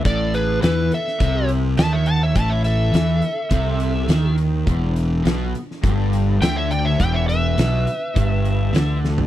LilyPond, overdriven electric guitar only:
\new Staff \with { instrumentName = "Overdriven electric guitar" } { \clef bass \time 4/4 \key a \major \tempo 4 = 103 a,4 e8 r8 c4 dis4 | a,4 e8 r8 c4 dis4 | e,4 b,8 r8 g,4 d4 | e,4 b,8 r8 g,4 d4 | }